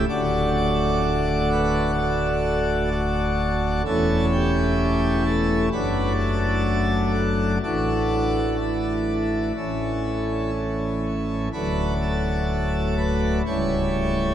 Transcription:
0.09 D1 D2 A3 D4 F#4 D5
0.57 D5
1.51 B4
1.98 A4
2.91 F#4
3.85 E1 E2 A3 C#4 E4 A4
4.32 G4
5.26 A4
5.72 F#1 F#2 F#3 A3 D4 B4
6.20 A4
7.15 F#4
7.63 A1 A2 E3 A3 D4 F#4
8.60 E4
9.57 A1 A2 E3 A3 C#4
11.53 D1 D2 F#3 A3 D4 B4
12.01 A4
12.98 B4
13.46 C#1 C#2 G3 A3 E4 C#5

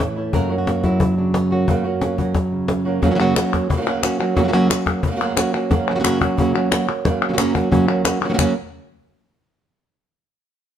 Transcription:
Already playing: A2 E3 A4
0.00 E3 A3 C#4 E4, cajon bass, cajon slap
0.16 A3 C#4 E4
0.33 F#2 C#3 F#3 A#3 C#4 F#4 A#4, cajon bass
0.50 F#3 A#3 C#4 F#4
0.58 F#4
0.67 F#3 A#3 C#4 F#4, cajon slap
0.83 F#3 A#3 C#4 E4 F#4, cajon bass, cajon slap
1.00 muted nylon-string guitar stroke, cajon bass
1.18 C#3 D4, cajon slap
1.34 C#4, cajon slap
1.51 F#3 A#3 C#4 F#4
1.68 F#2 C#3 F#3 A#3 C#4 F#4, cajon bass
1.84 F#3 A#3 C#4 F#4
2.01 F#3 A#3 C#4 F#4, cajon slap
2.18 F#3 A#3 C#4 F#4, cajon bass
2.35 muted nylon-string guitar stroke, cajon bass, cajon slap
2.52 C#3
2.68 C#4, cajon slap
2.85 F#3 A#3 C#4 F#4 A#4
3.02 F#2 C#3 F#3 A#3 C#4 F#4, cajon bass, cajon slap
3.11 C#3 F#3 A#3 C#4 F#4
3.15 C#3 F#3 A#3
3.19 F#2 C#3 F#3 A#3 C#4 F#4, cajon slap
3.36 F#3 A#3 C#4 F#4, cajon slap, clap
3.53 cajon bass, cajon slap, clap
3.70 C#3 F#3 A#3 C#4 F#4, muted nylon-string guitar stroke, cajon bass
3.77 C#3 F#3 A#3 C#4 F#4
3.81 C#3 F#3 A#3 C#4 F#4
3.86 F#2 C#3 F#3 A#3 C#4 F#4
4.03 F#3 A#3 C#4 F#4, cajon slap, clap
4.19 F#3 A#3 C#4 F#4, clap
4.36 F#2 C#3 F#3 A#3 C#4 F#4, cajon bass, cajon slap
4.44 C#3 F#3 A#3 C#4 F#4
4.48 C#3 F#3 A#3 C#4
4.52 F#2 C#3 F#3 A#3 C#4 F#4, cajon slap
4.70 F#3 A#3 C#4 F#4, cajon slap, clap
4.86 cajon bass, cajon slap, clap
5.03 C#3, muted nylon-string guitar stroke, cajon bass
5.07 F#3 A#3 C#4 F#4
5.11 C#3 F#3 A#3 C#4 F#4
5.16 C#3 F#3 A#3 C#4 F#4
5.21 F#2 C#3 F#3 A#3 C#4 F#4
5.37 F#3 A#3 C#4 F#4, cajon slap, clap
5.53 F#3 A#3 C#4 F#4
5.70 F#2 C#3 F#3 A#3 C#4 F#4, muted nylon-string guitar stroke, cajon bass, cajon slap
5.88 C#3 F#3 A#3 C#4 F#4, cajon slap
5.95 C#3 F#3 A#3 C#4 F#4
5.99 C#3 F#3 A#3 C#4 F#4
6.04 F#2 C#3 A#3 C#4 F#4, cajon slap, clap
6.21 F#3 A#3 C#4 F#4, cajon bass
6.37 F#2 C#3 F#3 A#3 C#4 F#4, muted nylon-string guitar stroke, cajon bass
6.54 F#3 A#3 C#4 F#4
6.71 F#3 A#3 C#4 F#4, cajon slap, clap
6.89 muted nylon-string guitar stroke, clap
7.05 F#2 C#3 F#3 A#3 C#4 F#4, muted nylon-string guitar stroke, cajon bass, cajon slap
7.29 C#3 F#3 A#3 C#4 F#4
7.33 C#3 F#3 A#3 C#4 F#4
7.38 F#2 C#3 F#3 A#3 C#4 F#4, cajon slap, clap
7.55 F#3 A#3 C#4 F#4, cajon bass
7.71 F#2 C#3 F#3 A#3 C#4 F#4, muted nylon-string guitar stroke, cajon bass
7.88 F#3 A#3 C#4 F#4
8.04 F#3 A#3 C#4 F#4, cajon slap, clap
8.21 muted nylon-string guitar stroke, clap
8.25 C#3 F#3 A#3 C#4 F#4
8.29 C#3 F#3 A#3 C#4 F#4
8.34 C#3 F#3 A#3 C#4 F#4
8.38 F#2 C#3 F#3 A#3 C#4 F#4, cajon bass, clap

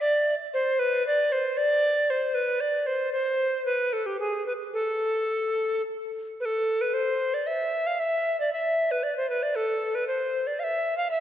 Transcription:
0.01 D5
0.54 C5
0.79 B4
1.07 D5
1.32 C5
1.57 D5
2.10 C5
2.35 B4
2.61 D5
2.87 C5
3.13 C5
3.66 B4
3.93 A4
4.06 G4
4.20 G#4
4.46 B4
4.74 A4
6.40 B4
6.45 A4
6.81 B4
6.94 C5
7.34 D5
7.47 E5
7.87 F5
7.99 E5
8.40 D5
8.53 E5
8.91 B4
9.03 D5
9.17 C5
9.30 B4
9.43 D5
9.56 A4
9.95 B4
10.07 C5
10.47 D5
10.59 F5
10.64 E5
10.97 F5
11.11 E5

